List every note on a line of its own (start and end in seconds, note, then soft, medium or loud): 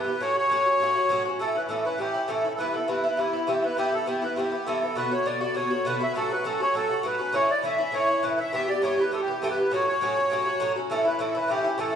0.00 0.22 B4 medium
0.06 0.21 E3 soft
0.06 0.21 B3 soft
0.06 0.20 G4 soft
0.20 0.37 A2 medium
0.20 0.37 F#3 medium
0.20 0.37 C#4 medium
0.20 0.35 F#4 medium
0.20 0.36 C#5 loud
0.36 0.50 F#3 soft
0.36 0.50 C#4 soft
0.36 0.50 F#4 soft
0.36 1.23 C#5 loud
0.50 0.66 A2 medium
0.50 0.67 F#3 medium
0.50 0.67 C#4 medium
0.50 0.65 F#4 medium
0.66 0.80 F#3 soft
0.66 0.81 C#4 soft
0.66 0.80 F#4 soft
0.80 0.96 A2 medium
0.80 0.97 F#3 medium
0.80 0.96 C#4 medium
0.80 0.94 F#4 medium
0.95 1.09 F#3 soft
0.95 1.10 C#4 soft
0.95 1.10 F#4 soft
1.09 1.26 A2 medium
1.09 1.26 F#3 medium
1.09 1.26 C#4 medium
1.09 1.24 F#4 medium
1.25 1.40 F#3 soft
1.25 1.40 C#4 soft
1.25 1.39 F#4 medium
1.39 1.56 A2 medium
1.39 1.56 E3 medium
1.39 1.56 C#4 medium
1.39 1.54 E4 medium
1.39 1.56 A4 medium
1.55 1.69 E3 soft
1.55 1.69 C#4 soft
1.55 1.69 E4 soft
1.55 1.70 B4 medium
1.69 1.85 A2 medium
1.69 1.86 E3 medium
1.69 1.86 C#4 medium
1.69 1.84 E4 medium
1.69 1.84 A4 medium
1.85 1.98 E3 soft
1.85 1.99 C#4 medium
1.85 1.99 E4 soft
1.85 1.99 B4 medium
1.98 2.15 A2 medium
1.98 2.15 E3 medium
1.98 2.15 C#4 medium
1.98 2.13 E4 medium
1.98 2.30 G4 medium
2.14 2.27 E3 soft
2.14 2.28 C#4 soft
2.14 2.28 E4 soft
2.28 2.44 A2 medium
2.28 2.45 E3 medium
2.28 2.45 C#4 medium
2.28 2.43 E4 medium
2.28 2.53 A4 medium
2.44 2.58 E3 soft
2.44 2.59 C#4 soft
2.44 2.58 E4 soft
2.55 2.75 G2 medium
2.55 2.58 A4 medium
2.59 2.75 E3 medium
2.59 2.74 B3 medium
2.59 2.72 E4 medium
2.59 2.75 B4 medium
2.74 2.87 E3 soft
2.74 2.88 B3 soft
2.74 2.88 E4 soft
2.74 2.88 A4 medium
2.87 3.04 G2 medium
2.87 3.04 E3 medium
2.87 3.04 B3 medium
2.87 3.02 E4 medium
2.87 3.19 B4 medium
3.04 3.17 E3 soft
3.04 3.18 B3 soft
3.04 3.18 E4 medium
3.17 3.34 G2 medium
3.17 3.34 E3 medium
3.17 3.34 B3 medium
3.17 3.49 E4 medium
3.17 3.32 E4 medium
3.33 3.47 E3 soft
3.33 3.47 B3 soft
3.33 3.47 E4 soft
3.47 3.63 G2 medium
3.47 3.64 E3 medium
3.47 3.63 B3 medium
3.47 3.61 E4 medium
3.47 3.64 G4 medium
3.62 3.77 E3 soft
3.62 3.77 B3 soft
3.62 3.77 E4 soft
3.62 3.77 B4 medium
3.77 3.93 G2 medium
3.77 3.94 E3 medium
3.77 3.93 B3 medium
3.77 3.91 E4 medium
3.77 3.94 G4 loud
3.92 4.06 E3 soft
3.92 4.06 B3 soft
3.92 4.07 E4 soft
3.92 4.07 A4 medium
4.06 4.23 G2 medium
4.06 4.23 E3 medium
4.06 4.23 B3 medium
4.06 4.21 E4 medium
4.06 4.24 G4 medium
4.22 4.36 E3 soft
4.22 4.37 B3 medium
4.22 4.36 E4 medium
4.22 4.38 B4 medium
4.36 4.53 G2 medium
4.36 4.53 E3 medium
4.36 4.53 B3 medium
4.36 4.51 E4 medium
4.36 4.68 G4 medium
4.52 4.66 E3 soft
4.52 4.67 B3 soft
4.52 4.66 E4 soft
4.67 4.83 G2 medium
4.67 4.83 E3 medium
4.67 4.82 B3 medium
4.67 4.81 E4 medium
4.67 4.97 A4 medium
4.82 4.96 E3 soft
4.82 4.96 B3 soft
4.82 4.96 E4 soft
4.95 5.12 B2 medium
4.95 5.12 D3 medium
4.95 5.12 B3 medium
4.95 5.10 F#4 medium
4.95 5.13 B4 loud
5.11 5.25 D3 soft
5.11 5.26 B3 soft
5.11 5.26 F#4 soft
5.11 5.26 C#5 medium
5.25 5.42 B2 medium
5.25 5.42 D3 medium
5.25 5.41 B3 medium
5.25 5.40 F#4 medium
5.25 5.40 D5 medium
5.41 5.54 D3 soft
5.41 5.56 B3 soft
5.41 5.55 F#4 medium
5.41 5.56 D5 medium
5.54 5.71 B2 medium
5.54 5.72 D3 medium
5.54 5.71 B3 medium
5.54 5.69 F#4 medium
5.54 5.86 C#5 medium
5.70 5.85 D3 soft
5.70 5.86 B3 soft
5.70 5.85 F#4 soft
5.85 6.01 B2 medium
5.85 6.02 D3 medium
5.85 6.01 B3 medium
5.85 5.99 F#4 medium
5.85 6.03 B4 medium
6.00 6.15 D3 soft
6.00 6.16 B3 soft
6.00 6.15 F#4 soft
6.00 6.13 E5 loud
6.12 6.31 A2 medium
6.12 6.31 F#3 medium
6.12 6.15 B4 medium
6.17 6.31 C#4 medium
6.17 6.29 F#4 medium
6.17 6.32 A4 loud
6.30 6.44 F#3 soft
6.30 6.45 C#4 soft
6.30 6.44 F#4 soft
6.30 6.44 B4 medium
6.44 6.60 A2 medium
6.44 6.61 F#3 medium
6.44 6.61 C#4 medium
6.44 6.59 F#4 medium
6.44 6.61 A4 medium
6.60 6.74 F#3 soft
6.60 6.75 C#4 medium
6.60 6.74 F#4 soft
6.60 6.75 C#5 medium
6.74 6.90 A2 medium
6.74 6.91 F#3 medium
6.74 6.90 C#4 medium
6.74 6.88 F#4 medium
6.74 7.05 A4 medium
6.89 7.03 F#3 soft
6.89 7.04 C#4 soft
6.89 7.04 F#4 soft
7.03 7.20 A2 medium
7.03 7.20 F#3 medium
7.03 7.19 C#4 medium
7.03 7.18 F#4 medium
7.03 7.35 B4 medium
7.19 7.33 F#3 soft
7.19 7.33 C#4 soft
7.19 7.33 F#4 soft
7.33 7.49 A2 medium
7.33 7.50 E3 medium
7.33 7.49 C#4 medium
7.33 7.47 E4 medium
7.33 7.51 C#5 loud
7.48 7.62 E3 soft
7.48 7.63 C#4 soft
7.48 7.63 E4 soft
7.48 7.63 D5 medium
7.63 7.79 A2 medium
7.63 7.79 E3 medium
7.63 7.79 C#4 medium
7.63 7.77 E4 medium
7.63 7.95 E5 medium
7.78 7.93 E3 soft
7.78 7.93 C#4 medium
7.78 7.93 E4 medium
7.92 8.09 A2 medium
7.92 8.09 E3 medium
7.92 8.09 C#4 medium
7.92 8.07 E4 medium
7.92 8.24 C#5 loud
8.09 8.22 E3 soft
8.09 8.23 C#4 soft
8.09 8.23 E4 soft
8.22 8.39 A2 medium
8.22 8.39 E3 medium
8.22 8.39 C#4 medium
8.22 8.37 E4 medium
8.22 8.40 B4 medium
8.38 8.52 E3 soft
8.38 8.53 C#4 soft
8.38 8.52 E4 soft
8.38 8.52 E5 medium
8.52 8.68 G2 medium
8.52 8.69 E3 medium
8.52 8.68 B3 medium
8.52 8.67 G4 medium
8.52 8.69 E5 loud
8.68 8.82 E3 soft
8.68 8.82 B3 soft
8.68 8.82 G4 soft
8.68 8.82 D5 medium
8.82 8.98 G2 medium
8.82 8.99 E3 medium
8.82 8.98 B3 medium
8.82 8.96 G4 medium
8.82 8.99 C#5 medium
8.98 9.12 E3 soft
8.98 9.13 B3 medium
8.98 9.12 G4 medium
8.98 9.11 B4 medium
9.12 9.28 G2 medium
9.12 9.28 E3 medium
9.12 9.28 B3 medium
9.12 9.27 G4 medium
9.12 9.21 A4 medium
9.21 9.43 G4 medium
9.28 9.42 E3 soft
9.28 9.42 B3 soft
9.28 9.42 G4 soft
9.42 9.58 G2 medium
9.42 9.58 E3 medium
9.42 9.58 B3 medium
9.42 9.56 G4 medium
9.42 9.50 A4 medium
9.50 9.72 B4 medium
9.58 9.72 E3 soft
9.58 9.72 B3 soft
9.58 9.71 G4 soft
9.71 9.87 A2 medium
9.71 9.88 F#3 medium
9.71 9.88 C#4 medium
9.71 9.86 F#4 medium
9.71 9.86 C#5 loud
9.88 10.01 F#3 soft
9.88 10.02 C#4 soft
9.88 10.01 F#4 soft
9.88 10.72 C#5 loud
10.01 10.17 A2 medium
10.01 10.17 F#3 medium
10.01 10.17 C#4 medium
10.01 10.15 F#4 medium
10.16 10.30 F#3 soft
10.16 10.31 C#4 soft
10.16 10.30 F#4 medium
10.30 10.46 A2 medium
10.30 10.47 F#3 medium
10.30 10.47 C#4 medium
10.30 10.45 F#4 medium
10.46 10.59 F#3 soft
10.46 10.60 C#4 soft
10.46 10.60 F#4 medium
10.60 10.76 A2 medium
10.60 10.76 F#3 medium
10.60 10.76 C#4 medium
10.60 10.75 F#4 medium
10.76 10.90 F#3 soft
10.76 10.90 C#4 soft
10.76 10.90 F#4 medium
10.90 11.06 A2 medium
10.90 11.06 E3 medium
10.90 11.06 C#4 medium
10.90 11.04 E4 medium
10.90 11.06 A4 loud
11.05 11.19 E3 soft
11.05 11.19 C#4 soft
11.05 11.19 E4 soft
11.05 11.20 B4 medium
11.19 11.35 A2 medium
11.19 11.35 E3 medium
11.19 11.35 C#4 medium
11.19 11.33 E4 medium
11.19 11.36 A4 medium
11.35 11.48 E3 soft
11.35 11.49 C#4 soft
11.35 11.49 E4 medium
11.35 11.50 B4 medium
11.48 11.64 A2 medium
11.48 11.65 E3 medium
11.48 11.65 C#4 medium
11.48 11.63 E4 medium
11.48 11.80 G4 medium
11.64 11.77 E3 soft
11.64 11.78 C#4 soft
11.64 11.78 E4 medium
11.78 11.94 A2 medium
11.78 11.94 E3 medium
11.78 11.94 C#4 medium
11.78 11.92 E4 medium
11.78 11.96 A4 medium